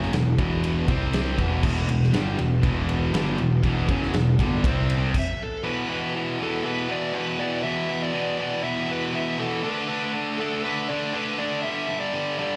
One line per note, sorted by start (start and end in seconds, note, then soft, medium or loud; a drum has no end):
0.00 0.12 F#1 medium
0.00 0.13 F#2 medium
0.00 0.14 C#3 loud
0.00 0.85 E3 medium
0.00 0.14 F#3 medium
0.00 0.86 B3 medium
0.00 0.85 F#4 medium
0.00 snare soft
0.13 0.38 E1 medium
0.13 0.34 E2 medium
0.13 0.34 B2 medium
0.13 snare loud
0.13 ride medium
0.38 0.85 E1 medium
0.38 0.88 E2 medium
0.38 0.87 B2 loud
0.38 0.88 E3 loud
0.38 kick loud
0.38 ride medium
0.64 ride loud
0.86 1.35 C2 medium
0.86 1.38 C3 medium
0.86 1.38 G3 medium
0.86 1.37 C4 medium
0.86 1.38 C4 loud
0.86 1.37 G4 medium
0.86 1.37 D5 medium
0.86 kick loud
0.86 ride medium
1.13 snare loud
1.13 ride loud
1.38 1.62 E1 medium
1.38 1.63 E2 medium
1.38 1.63 B2 medium
1.38 4.61 E3 medium
1.38 1.64 E3 loud
1.38 4.61 B3 medium
1.38 4.61 F#4 medium
1.38 kick medium
1.38 ride medium
1.63 1.87 E1 loud
1.63 1.88 E2 medium
1.63 1.89 B2 medium
1.63 1.89 E3 loud
1.63 kick loud
1.63 crash loud
1.89 2.12 E1 medium
1.89 2.10 E2 medium
1.89 2.09 B2 medium
1.89 ride medium
2.03 snare soft
2.13 2.37 G1 medium
2.13 2.38 G2 medium
2.13 2.38 D3 loud
2.13 2.39 G3 loud
2.13 snare loud
2.13 ride loud
2.38 2.62 E1 medium
2.38 2.59 E2 medium
2.38 2.59 B2 medium
2.38 ride medium
2.63 3.10 E1 medium
2.63 3.14 E2 loud
2.63 3.14 B2 loud
2.63 3.14 E3 medium
2.63 kick loud
2.63 ride loud
2.89 ride medium
3.14 3.37 G1 loud
3.14 3.39 G2 medium
3.14 3.39 D3 medium
3.14 3.39 G3 medium
3.14 snare loud
3.14 ride medium
3.38 3.62 E1 medium
3.38 3.60 E2 medium
3.38 3.60 B2 medium
3.38 ride medium
3.63 3.87 E1 loud
3.63 3.89 E2 medium
3.63 3.89 B2 loud
3.63 3.89 E3 medium
3.63 kick loud
3.63 ride loud
3.89 4.12 F#1 loud
3.89 4.14 F#2 medium
3.89 4.14 C#3 loud
3.89 4.14 F#3 medium
3.89 kick loud
3.89 ride medium
4.02 snare soft
4.14 4.37 E1 medium
4.14 4.35 E2 medium
4.14 4.35 B2 medium
4.14 snare loud
4.14 ride medium
4.39 4.62 G1 medium
4.39 4.64 G2 medium
4.39 4.64 D3 medium
4.39 4.64 G3 loud
4.39 kick loud
4.39 ride medium
4.62 5.11 C2 medium
4.62 5.14 C3 medium
4.62 5.14 G3 medium
4.62 5.13 C4 medium
4.62 5.14 C4 loud
4.62 5.13 G4 medium
4.62 5.13 D5 medium
4.62 kick loud
4.62 ride loud
4.90 ride medium
5.14 kick loud
5.14 crash loud
5.19 5.43 E5 loud
5.42 5.64 A4 medium
5.62 5.89 E2 loud
5.62 5.88 B2 medium
5.62 9.61 E3 medium
5.62 5.90 E3 loud
5.62 9.61 B3 medium
5.62 9.60 F#4 medium
5.62 6.11 B4 medium
5.89 6.14 E2 medium
5.89 6.14 B2 medium
5.89 6.15 E3 medium
6.15 6.40 E2 loud
6.15 6.39 B2 loud
6.15 6.40 E3 loud
6.40 6.63 E2 loud
6.40 6.63 B2 medium
6.40 6.63 E3 loud
6.40 6.65 A4 medium
6.64 6.87 E2 medium
6.64 6.88 B2 loud
6.64 6.88 E3 loud
6.64 6.89 B4 medium
6.88 7.12 E2 medium
6.88 7.13 B2 medium
6.88 7.13 E3 medium
6.88 7.16 D5 medium
7.13 7.38 E2 medium
7.13 7.39 B2 loud
7.13 7.39 E3 medium
7.13 7.40 B4 loud
7.39 7.63 E2 medium
7.39 7.64 B2 loud
7.39 7.64 E3 medium
7.39 7.63 D5 loud
7.63 7.89 E2 loud
7.63 7.89 B2 medium
7.63 7.90 E3 loud
7.63 8.03 E5 loud
7.90 8.13 E2 medium
7.90 8.13 B2 medium
7.90 8.14 E3 medium
8.03 8.37 D5 medium
8.14 8.38 E2 loud
8.14 8.38 B2 loud
8.14 8.39 E3 loud
8.39 8.62 E2 medium
8.39 8.62 B2 loud
8.39 8.63 E3 loud
8.39 8.63 D5 medium
8.63 8.87 E2 medium
8.63 8.87 B2 loud
8.63 8.87 E3 loud
8.63 8.90 E5 medium
8.88 9.12 E2 medium
8.88 9.13 B2 medium
8.88 9.14 E3 loud
8.88 9.14 B4 medium
9.13 9.37 E2 medium
9.13 9.38 B2 medium
9.13 9.38 E3 medium
9.13 9.41 E5 loud
9.39 9.63 E2 medium
9.39 9.62 B2 medium
9.39 9.63 E3 medium
9.39 9.63 A4 medium
9.62 9.87 D3 loud
9.62 9.87 A3 medium
9.62 9.89 D4 loud
9.62 12.56 D4 medium
9.62 12.56 A4 medium
9.62 10.11 B4 medium
9.62 11.63 E5 medium
9.88 10.12 D3 medium
9.88 10.13 A3 medium
9.88 10.14 D4 medium
10.14 10.38 D3 medium
10.14 10.39 A3 loud
10.14 10.40 D4 loud
10.38 10.63 D3 medium
10.38 10.64 A3 loud
10.38 10.64 D4 medium
10.38 10.63 A4 medium
10.64 10.89 D3 loud
10.64 10.89 A3 loud
10.64 10.90 D4 medium
10.64 10.90 B4 loud
10.88 11.13 D3 medium
10.88 11.13 A3 medium
10.88 11.13 D4 loud
10.88 11.15 D5 loud
11.13 11.37 D3 medium
11.13 11.38 A3 medium
11.13 11.38 D4 medium
11.13 11.40 B4 loud
11.38 11.63 D3 medium
11.38 11.63 A3 medium
11.38 11.63 D4 medium
11.38 11.62 D5 loud
11.63 11.87 G2 medium
11.63 11.87 D3 loud
11.63 12.56 G3 medium
11.63 11.89 G3 loud
11.63 11.99 E5 loud
11.88 12.13 G2 medium
11.88 12.13 D3 medium
11.88 12.14 G3 loud
12.00 12.37 D5 loud
12.14 12.38 G2 loud
12.14 12.38 D3 loud
12.14 12.40 G3 loud
12.39 12.56 G2 medium
12.39 12.56 D3 medium
12.39 12.56 G3 loud
12.39 12.56 D5 loud